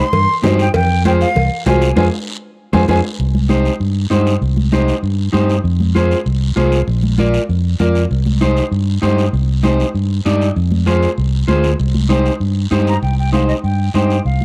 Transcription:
0.00 C6
0.13 G2, cowbell, high conga, low conga, long guiro
0.43 G2 D#4 G4 C5, cowbell, high conga, low conga, low timbale, short guiro
0.59 G5, short guiro
0.74 F2 G5, cowbell, high conga, low conga, long guiro
1.05 F4 G#4 C5 G5, cowbell, high conga, short guiro
1.21 F5, short guiro
1.35 C2, cowbell, high conga, low conga, long guiro
1.66 C2 F4 G#4 C5 G#5, cowbell, high conga, low conga, low timbale, short guiro
1.82 short guiro
1.96 F2 F4 G#4 C5 G#5, high conga, high timbale, long guiro
2.73 F2 F4 G#4 C5 G#5, high conga, high timbale, long guiro
2.88 F2 F4 G#4 C5 G#5, high conga, high timbale, long guiro
3.19 C2, long guiro
3.35 high conga
3.49 D#4 G4 C5, high conga, short guiro
3.65 short guiro
3.80 G2, long guiro
4.10 G2 D#4 G4 C5, high conga, short guiro
4.27 short guiro
4.41 C2, long guiro
4.57 high conga
4.72 D#4 G4 C5, high conga, short guiro
4.88 short guiro
5.03 G2, long guiro
5.33 G2 D#4 G4 C5, high conga, short guiro
5.50 short guiro
5.64 F2, long guiro
5.80 high conga
5.95 F4 G#4 C5, high conga, short guiro
6.11 short guiro
6.26 C2, long guiro
6.56 C2 F4 G#4 C5, high conga, short guiro
6.72 short guiro
6.88 A#1, long guiro
7.03 high conga
7.18 F4 A#4 D5, high conga, short guiro
7.34 short guiro
7.49 F2, long guiro
7.80 F2 F4 A#4 D5, high conga, short guiro
7.95 short guiro
8.11 C2, long guiro
8.26 high conga
8.41 D#4 G4 C5, high conga, short guiro
8.57 short guiro
8.72 G2, long guiro
9.02 G2 D#4 G4 C5, high conga, short guiro
9.18 short guiro
9.33 C2, long guiro
9.63 D#4 G4 C5, high conga, short guiro
9.80 short guiro
9.94 G2, long guiro
10.25 G2 D#4 G4 D5, high conga, short guiro
10.41 short guiro
10.56 F2, long guiro
10.71 high conga
10.86 F4 G#4 C5, high conga, short guiro
11.02 short guiro
11.18 C2, long guiro
11.48 D2 F4 G#4 C5, high conga, short guiro
11.64 short guiro
11.80 C2, long guiro
11.95 high conga
12.09 D#4 G4 C5, high conga, short guiro
12.26 short guiro
12.40 G2, long guiro
12.71 G2 D#4 G4 C5, high conga, short guiro
12.87 A#5, short guiro
13.02 C2 G5, long guiro
13.18 G5
13.32 D#4 G4 C5 F5, high conga, short guiro
13.48 D#5, short guiro
13.63 G2 G5, long guiro
13.94 G2 D#4 G4 C5 G5, high conga, short guiro
14.10 short guiro
14.25 C2 F5, long guiro
14.41 high conga

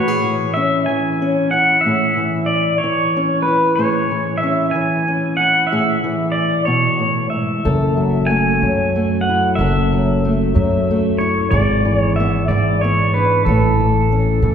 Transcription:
Already playing: A2 E3 C#5
0.08 G#4
0.24 E3
0.54 C#4 E5
0.86 E3 G#5
1.22 C#4
1.51 E4 F#5
1.81 E5
1.85 A2 G#4
2.17 E3
2.46 D5
2.78 C#5
2.84 E3
3.17 C#4
3.42 B4
3.48 E4
3.76 A2 G#4 C#5
4.11 E3
4.38 E5
4.43 C#4
4.71 E3 G#5
5.08 C#4
5.37 E4 F#5
5.67 E5
5.72 A2 G#4
6.04 E3
6.32 D5
6.65 B2 C#5
6.99 A2
7.30 G#2 E5
7.65 F#1 F#2 A4
7.97 F#3
8.27 A3 G#5
8.62 F#2 F#3
8.96 A3
9.21 F#5
9.29 E4
9.55 F#1 E5
9.60 F#2 A4
9.92 F#3
10.25 A3
10.55 F#2 F#3
10.91 A3
11.19 E4 C#5
11.51 G#1 G#2 G#4 D5
11.85 E3
11.99 C#5
12.16 B3 E5
12.48 G#2 E3 D5
12.81 B3 C#5
13.14 D4 B4
13.45 A1 A2 E4 A4
13.80 E3
14.12 C#4
14.42 A2 E3

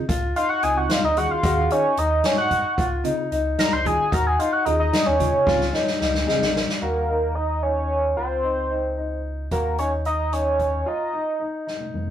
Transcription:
0.09 C#2 F4, kick, closed hi-hat
0.36 D#4 F5 C6, closed hi-hat
0.49 F#5 C#6
0.63 C#2 C#3 C4 D#4 F4 G#5 D#6, closed hi-hat
0.77 F#5 C#6
0.90 D#4 F5 C6, snare, closed hi-hat
1.03 D2 D#5 A#5
1.16 D#3 C#4 F4 F#4 G#4 F#5 C#6, closed hi-hat
1.31 F5 C6
1.43 D#2 D#3 C#4 F4 F#4 G#4, kick, closed hi-hat
1.70 D#4 C#5 G#5, closed hi-hat
1.97 D#2 D#4 D#5 A#5, closed hi-hat
2.24 D#4 C#5 G#5, snare, closed hi-hat
2.37 G#2 F#5 C#6
2.51 kick, closed hi-hat
2.78 C#2 F4, kick, closed hi-hat
3.04 C#3 C4 D#4 F4, closed hi-hat
3.31 C#2 D#4, closed hi-hat
3.58 D#4 A#5 F6, snare, closed hi-hat
3.72 C#2 C6 G6
3.85 D#3 C#4 F4 F#4 G#4 G#5 D#6, kick, closed hi-hat
4.12 D#2 F#4 A#5 F6, kick, closed hi-hat
4.27 G#5 D#6
4.39 D#4 F5 C6, closed hi-hat
4.53 F#5 C#6
4.65 D#2 D#3 C#4 D#4 F4 F#4 G#4 D#5 A#5, closed hi-hat
4.80 D#5 A#5
4.93 D#4, snare, closed hi-hat
5.06 D#2 C#5 G#5
5.19 C3 C#3 D#4 F4, kick, closed hi-hat
5.46 C#2 C#3 C4 D#4 F4, kick, snare
5.60 snare
5.73 D#4, snare
5.87 snare
6.01 C#2 D#4, snare
6.14 snare
6.27 C#3 C4 D#4 G#4 G#5, snare
6.41 A#1 D#5, snare
6.56 snare
6.69 snare
6.81 D#2 F#4 A#4 F5
7.09 D#4
7.35 D#4 D#5 A#5
7.63 D#4 C#5 G#5
8.17 C#2 F4 C5 G5
8.44 D#4
8.71 D#4
8.97 D#4
9.51 D#2 F#4 A#4 F5, kick, closed hi-hat
9.78 D#4 C#5 G#5, closed hi-hat
10.05 D#4 D#5 A#5, closed hi-hat
10.32 D#4 C#5 G#5, closed hi-hat
10.59 kick, closed hi-hat
10.86 F4 D#5 A#5
11.13 D#4
11.40 D#4
11.67 D#4, snare
11.80 high tom
11.94 mid tom

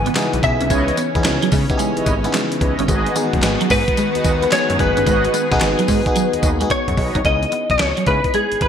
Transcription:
Already playing: C#3 E3 B3 D#4 E4 F#4 G#4 G#5
0.06 B3, closed hi-hat
0.15 G#3 B3 D#4 E4 G#4, snare, clap, closed hi-hat, tambourine
0.33 B1, closed hi-hat
0.43 B1 B3 D#4 E4 G#4 E5, muted clean electric guitar stroke, kick, closed hi-hat
0.61 C2 C#4, closed hi-hat
0.70 C#2 C#4 E4 B4 C#5 D#5, kick, closed hi-hat, tambourine
0.88 muted clean electric guitar stroke, closed hi-hat
0.97 B3, closed hi-hat, tambourine
1.15 E2 B3 D#4 E4 G#4, kick, closed hi-hat
1.24 C#2, muted clean electric guitar stroke, snare, clap, closed hi-hat, tambourine
1.42 F#3, closed hi-hat
1.52 C#3 G#3, kick, open hi-hat, tambourine
1.70 B3 D#4 E4 G4, kick, closed hi-hat
1.77 G#3 G#4, closed hi-hat, tambourine
1.97 G#1 E4 B4 C#5 D#5, closed hi-hat
2.06 G#1, muted clean electric guitar stroke, kick, closed hi-hat, tambourine
2.24 B3 D#4 E4 G#4, closed hi-hat
2.33 G#3, snare, clap, closed hi-hat, tambourine
2.52 closed hi-hat
2.61 C#2 E4 B4 C#5 D#5, muted clean electric guitar stroke, kick, closed hi-hat
2.79 G1 C#4, closed hi-hat
2.88 G#1 D#3 G#3 B3 F#4 G#4 B4 D#5, kick, closed hi-hat, tambourine
3.06 muted clean electric guitar stroke, closed hi-hat
3.15 B3 D#4 F#4 G#4, closed hi-hat, tambourine
3.33 F#1, kick, closed hi-hat
3.42 G#1 B3 D#4 F#4 G#4, muted clean electric guitar stroke, snare, clap, closed hi-hat, tambourine
3.61 F#3, closed hi-hat
3.70 G#2 G#3 B4, kick, open hi-hat, tambourine
3.88 kick, closed hi-hat
3.97 G#3, closed hi-hat, tambourine
4.15 D#2 F#4 G#4 B4 D#5, closed hi-hat
4.24 D#2, muted clean electric guitar stroke, kick, closed hi-hat, tambourine
4.42 B3, closed hi-hat
4.52 G#3 B3 D#4 F#4 G#4 C#5, snare, clap, closed hi-hat, tambourine
4.70 F#2, closed hi-hat
4.79 F#1 B3 D#4 F#4 G#4 B4, muted clean electric guitar stroke, kick, closed hi-hat
4.97 G1 C#4, closed hi-hat
5.06 G#1 G#3 F#4 G#4 B4 D#5, kick, closed hi-hat, tambourine
5.24 muted clean electric guitar stroke, closed hi-hat
5.34 B3, closed hi-hat, tambourine
5.51 B1 B3 D#4 F#4 G#4, kick, snare, closed hi-hat
5.61 G#1, muted clean electric guitar stroke, snare, clap, closed hi-hat, tambourine
5.79 F#3, closed hi-hat
5.88 G#2 G#3, kick, open hi-hat, tambourine
6.06 B3 D#4 F#4 G#4, kick, closed hi-hat
6.16 F#3, closed hi-hat, tambourine
6.33 D#2 F#4 G#4 B4 D#5, closed hi-hat
6.43 D#2, muted clean electric guitar stroke, kick, closed hi-hat, tambourine
6.61 G#3 B3 D#4 F#4 G#4, closed hi-hat
6.70 B3 C#5, kick, closed hi-hat
6.88 F#2, kick, closed hi-hat
6.97 B1 F#4 G#4 B4 D#5, muted clean electric guitar stroke, kick, open hi-hat
7.15 C2 D#4, kick, closed hi-hat
7.25 C#2 B3 C#4 D#4 E4 G#4 D#5, kick, closed hi-hat
7.42 muted clean electric guitar stroke, closed hi-hat
7.52 B3, closed hi-hat
7.70 B1 C#5, kick, closed hi-hat
7.79 C#2, muted clean electric guitar stroke, snare, clap, closed hi-hat
7.97 F#3, closed hi-hat
8.06 C#3 G#3 B3 D#4 E4 B4, kick, closed hi-hat
8.24 kick, closed hi-hat
8.34 G#3 G#4, closed hi-hat
8.52 G#1, closed hi-hat
8.61 G#1 B4, muted clean electric guitar stroke, kick, closed hi-hat

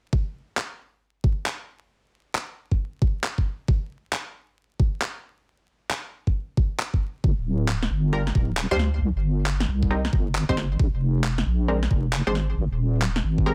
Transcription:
0.13 kick
0.57 clap
1.24 kick
1.46 clap
2.35 clap
2.71 kick
3.02 kick
3.24 clap
3.38 kick
3.68 kick
4.13 clap
4.80 kick
5.02 clap
5.91 clap
6.27 kick
6.57 kick
6.79 clap
6.94 kick
7.24 G1, kick
7.38 D1
7.68 clap
7.82 snare
7.91 G1
8.13 G3 D4 F4 A#4
8.27 snare
8.35 D1, kick
8.57 clap
8.71 D2 G3 D4 F4 C5
8.79 snare
9.02 C2
9.16 G1
9.46 clap
9.60 snare
9.68 C2
9.83 kick
9.91 G3 C4 D#4 A#4
10.05 snare
10.13 G1, kick
10.35 clap
10.49 G1 G3 C4 D#4 C5, kick
10.57 snare
10.80 A#1, kick
10.94 F1
11.24 clap
11.38 snare
11.46 A#1
11.68 G#3 C4 D4 A#4
11.83 snare
11.91 F1, kick
12.13 clap
12.27 G#1 G#3 C4 D4 C5
12.35 snare
12.57 G#1
12.71 D#1
13.02 clap
13.16 snare
13.24 G#1
13.38 kick
13.46 G#3 C4 G4 A#4

